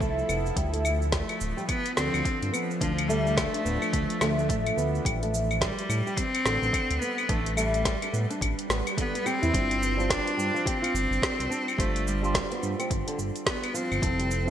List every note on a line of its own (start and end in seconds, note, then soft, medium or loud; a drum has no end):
0.00 0.23 C2 medium
0.00 0.53 F3 medium
0.00 0.17 A3 medium
0.00 0.53 E4 medium
0.00 0.53 A4 medium
0.00 kick loud
0.00 cabasa soft
0.19 cabasa soft
0.29 0.52 F1 loud
0.29 0.56 B3 medium
0.29 cabasa medium
0.29 claves medium
0.46 cabasa soft
0.56 1.23 D2 loud
0.56 5.01 F3 medium
0.56 0.73 G3 medium
0.56 5.02 D4 medium
0.56 kick loud
0.56 closed hi-hat medium
0.56 cabasa soft
0.73 0.84 A3 medium
0.73 closed hi-hat soft
0.73 cabasa soft
0.85 cabasa medium
0.85 claves medium
1.02 cabasa soft
1.12 1.65 A3 medium
1.12 kick loud
1.12 snare medium
1.12 closed hi-hat medium
1.12 cabasa soft
1.29 closed hi-hat soft
1.29 cabasa soft
1.29 claves medium
1.41 1.54 D1 medium
1.41 cabasa medium
1.57 1.64 G3 medium
1.57 cabasa soft
1.69 1.95 B3 loud
1.69 kick loud
1.69 closed hi-hat medium
1.69 cabasa soft
1.69 claves medium
1.86 closed hi-hat soft
1.86 cabasa soft
1.96 2.10 D2 medium
1.96 2.52 D3 medium
1.96 2.49 C4 loud
1.96 snare medium
1.96 cabasa medium
2.14 2.22 D2 medium
2.14 cabasa soft
2.14 claves medium
2.25 kick loud
2.25 closed hi-hat medium
2.25 cabasa soft
2.42 2.51 G2 medium
2.42 closed hi-hat soft
2.42 cabasa soft
2.53 2.69 B3 medium
2.53 cabasa medium
2.53 claves medium
2.71 cabasa soft
2.81 3.47 D2 loud
2.81 3.09 F3 loud
2.81 2.91 D4 medium
2.81 kick loud
2.81 closed hi-hat medium
2.81 cabasa soft
2.98 closed hi-hat soft
2.98 cabasa soft
2.98 claves medium
3.08 3.38 G3 loud
3.08 3.25 A3 loud
3.08 cabasa medium
3.27 cabasa soft
3.36 4.49 A3 loud
3.36 kick loud
3.36 snare medium
3.36 closed hi-hat medium
3.36 cabasa soft
3.36 claves medium
3.54 3.64 D4 medium
3.54 closed hi-hat soft
3.54 cabasa soft
3.65 3.78 D1 medium
3.65 3.81 B3 medium
3.65 cabasa medium
3.82 4.20 D4 medium
3.82 cabasa soft
3.82 claves medium
3.93 4.06 D2 loud
3.93 kick loud
3.93 closed hi-hat medium
3.93 cabasa soft
4.10 closed hi-hat soft
4.10 cabasa soft
4.21 4.51 D2 medium
4.21 4.37 A3 medium
4.21 snare medium
4.21 cabasa medium
4.21 claves medium
4.39 cabasa soft
4.49 4.72 A1 medium
4.49 4.65 A3 medium
4.49 kick loud
4.49 closed hi-hat medium
4.49 cabasa soft
4.67 closed hi-hat soft
4.67 cabasa soft
4.67 claves medium
4.77 5.00 D2 loud
4.77 5.04 B3 medium
4.77 cabasa medium
4.95 cabasa soft
5.05 5.72 A1 loud
5.05 9.50 G3 medium
5.05 5.21 G3 medium
5.05 9.50 B4 medium
5.05 kick loud
5.05 closed hi-hat medium
5.05 cabasa soft
5.05 claves medium
5.23 5.33 A3 medium
5.23 closed hi-hat soft
5.23 cabasa soft
5.34 cabasa medium
5.51 cabasa soft
5.51 claves medium
5.61 6.19 G3 loud
5.61 kick loud
5.61 snare medium
5.61 closed hi-hat medium
5.61 cabasa soft
5.79 closed hi-hat soft
5.79 cabasa soft
5.89 6.02 A2 medium
5.89 cabasa medium
5.89 claves medium
6.07 6.13 G3 medium
6.07 cabasa soft
6.17 7.03 C4 loud
6.17 kick medium
6.17 closed hi-hat medium
6.17 cabasa soft
6.35 closed hi-hat soft
6.35 cabasa soft
6.35 claves medium
6.45 6.58 A1 medium
6.45 7.00 D3 medium
6.45 snare medium
6.45 cabasa medium
6.62 6.71 A1 medium
6.62 cabasa soft
6.73 kick loud
6.73 closed hi-hat medium
6.73 cabasa soft
6.73 claves medium
6.90 6.99 D2 medium
6.90 closed hi-hat soft
6.90 cabasa soft
7.01 7.31 B3 loud
7.01 7.18 B3 medium
7.01 cabasa medium
7.18 cabasa soft
7.18 claves medium
7.29 7.96 A1 loud
7.29 7.57 A3 loud
7.29 7.39 D4 loud
7.29 kick loud
7.29 closed hi-hat medium
7.29 cabasa soft
7.46 closed hi-hat soft
7.46 cabasa soft
7.57 8.38 G3 medium
7.57 7.73 A3 loud
7.57 cabasa medium
7.57 claves medium
7.74 closed hi-hat soft
7.74 cabasa soft
7.85 kick loud
7.85 snare medium
7.85 closed hi-hat medium
7.85 cabasa soft
8.02 8.13 D4 medium
8.02 closed hi-hat soft
8.02 cabasa soft
8.02 claves medium
8.13 8.26 A2 medium
8.13 8.29 B3 medium
8.13 cabasa medium
8.30 8.69 D4 medium
8.30 closed hi-hat soft
8.30 cabasa soft
8.41 8.54 A1 loud
8.41 kick medium
8.41 closed hi-hat medium
8.41 swell medium
8.41 cabasa soft
8.41 claves medium
8.59 closed hi-hat soft
8.59 cabasa soft
8.70 8.83 A1 medium
8.70 8.86 B3 medium
8.70 snare medium
8.70 cabasa medium
8.87 closed hi-hat soft
8.87 cabasa soft
8.87 claves medium
8.97 9.14 D3 medium
8.97 9.28 B3 loud
8.97 kick loud
8.97 closed hi-hat medium
8.97 cabasa soft
9.14 9.25 B3 medium
9.14 closed hi-hat soft
9.14 cabasa soft
9.26 10.11 C4 loud
9.26 9.41 G4 medium
9.26 cabasa medium
9.26 claves medium
9.42 9.51 E2 medium
9.42 9.53 E4 medium
9.42 closed hi-hat soft
9.42 cabasa soft
9.53 10.20 G1 loud
9.53 9.94 G3 medium
9.53 9.95 D4 medium
9.53 9.95 F4 medium
9.53 9.95 C5 loud
9.53 kick loud
9.53 closed hi-hat medium
9.53 cabasa soft
9.70 9.81 G3 medium
9.70 closed hi-hat soft
9.70 cabasa soft
9.83 cabasa medium
9.97 11.75 G3 medium
9.97 10.09 D4 medium
9.97 11.75 D4 medium
9.97 11.76 F4 medium
9.97 cabasa soft
10.01 11.77 C5 medium
10.09 10.26 G3 loud
10.09 10.68 D4 loud
10.09 kick loud
10.09 snare loud
10.09 closed hi-hat medium
10.09 cabasa soft
10.27 closed hi-hat soft
10.27 cabasa soft
10.37 10.51 G2 medium
10.37 10.54 G3 medium
10.37 cabasa medium
10.54 10.65 F3 medium
10.54 cabasa soft
10.66 11.81 C4 loud
10.66 10.81 G4 medium
10.66 kick loud
10.66 closed hi-hat medium
10.66 cabasa soft
10.82 10.93 F4 medium
10.82 closed hi-hat soft
10.82 cabasa soft
10.82 claves medium
10.94 11.07 G1 medium
10.94 cabasa medium
11.11 11.19 G1 medium
11.11 cabasa soft
11.22 kick loud
11.22 snare loud
11.22 closed hi-hat medium
11.22 cabasa soft
11.39 11.48 C2 medium
11.39 closed hi-hat soft
11.39 cabasa soft
11.50 11.66 D4 loud
11.50 cabasa medium
11.68 cabasa soft
11.68 claves medium
11.78 12.45 G1 loud
11.78 12.19 G3 medium
11.78 12.09 A3 loud
11.78 12.19 D4 medium
11.78 12.19 F4 medium
11.78 12.20 C5 loud
11.78 kick loud
11.78 closed hi-hat medium
11.78 cabasa soft
11.96 closed hi-hat soft
11.96 cabasa soft
12.07 12.63 G3 medium
12.07 cabasa medium
12.21 13.99 G3 medium
12.21 12.34 G3 medium
12.21 14.00 D4 medium
12.21 14.00 F4 medium
12.21 cabasa soft
12.26 14.01 C6 medium
12.34 kick loud
12.34 snare loud
12.34 closed hi-hat medium
12.34 cabasa soft
12.51 12.78 B3 medium
12.51 closed hi-hat soft
12.51 cabasa soft
12.63 12.75 G2 loud
12.63 cabasa medium
12.79 12.90 C4 medium
12.79 closed hi-hat soft
12.79 cabasa soft
12.79 claves medium
12.91 13.03 G1 loud
12.91 kick loud
12.91 closed hi-hat medium
12.91 cabasa medium
13.07 13.18 D3 medium
13.07 closed hi-hat soft
13.07 cabasa soft
13.19 13.31 G1 medium
13.19 cabasa medium
13.36 closed hi-hat soft
13.36 cabasa soft
13.46 13.76 B3 medium
13.46 kick loud
13.46 snare loud
13.46 closed hi-hat medium
13.46 cabasa soft
13.64 closed hi-hat soft
13.64 cabasa soft
13.64 claves medium
13.74 14.02 F3 medium
13.74 14.50 C4 loud
13.74 cabasa medium
13.92 14.00 G1 loud
13.92 cabasa soft
13.92 claves medium
14.02 14.50 F1 loud
14.02 14.43 F3 medium
14.02 14.43 C4 medium
14.02 14.43 E4 medium
14.02 14.44 A4 loud
14.02 kick loud
14.02 closed hi-hat medium
14.02 cabasa soft
14.19 14.30 G3 medium
14.19 closed hi-hat soft
14.19 cabasa soft
14.31 cabasa medium
14.45 14.50 F3 medium
14.45 14.50 C4 medium